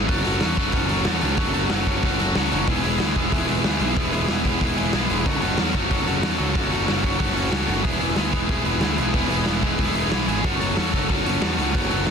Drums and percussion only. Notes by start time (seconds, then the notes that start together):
0.09 kick, open hi-hat
0.25 open hi-hat
0.41 snare, open hi-hat
0.57 kick, open hi-hat
0.72 kick, open hi-hat
0.89 open hi-hat
1.05 snare, open hi-hat
1.21 open hi-hat
1.37 kick, open hi-hat
1.54 open hi-hat
1.70 snare, open hi-hat
1.87 kick, open hi-hat
2.03 kick, open hi-hat
2.19 open hi-hat
2.35 snare, open hi-hat
2.52 open hi-hat
2.67 kick, open hi-hat
2.84 open hi-hat
3.00 snare, open hi-hat
3.16 kick
3.32 kick, open hi-hat
3.49 open hi-hat
3.64 snare, open hi-hat
3.81 open hi-hat
3.97 kick, open hi-hat
4.13 open hi-hat
4.28 snare, open hi-hat
4.45 kick, open hi-hat
4.61 kick, open hi-hat
4.78 open hi-hat
4.93 snare, open hi-hat
5.10 open hi-hat
5.26 kick, open hi-hat
5.42 open hi-hat
5.58 snare, open hi-hat
5.74 kick, open hi-hat
5.91 kick, open hi-hat
6.07 open hi-hat
6.23 snare, open hi-hat
6.39 open hi-hat
6.55 kick, open hi-hat
6.72 open hi-hat
6.88 snare, open hi-hat
7.04 kick, open hi-hat
7.20 kick, open hi-hat
7.37 open hi-hat
7.53 snare, open hi-hat
7.69 open hi-hat
7.85 kick, open hi-hat
8.01 open hi-hat
8.16 snare, open hi-hat
8.33 kick, open hi-hat
8.49 kick, open hi-hat
8.65 open hi-hat
8.81 snare, open hi-hat
8.98 open hi-hat
9.14 kick, open hi-hat
9.30 open hi-hat
9.46 snare, open hi-hat
9.62 kick, open hi-hat
9.79 kick, open hi-hat
9.95 open hi-hat
10.12 snare, open hi-hat
10.28 open hi-hat
10.44 kick, open hi-hat
10.61 open hi-hat
10.77 snare, open hi-hat
10.93 kick, open hi-hat
11.10 kick, open hi-hat
11.26 open hi-hat
11.42 snare, open hi-hat
11.59 open hi-hat
11.75 kick, open hi-hat
11.91 open hi-hat
12.07 snare, open hi-hat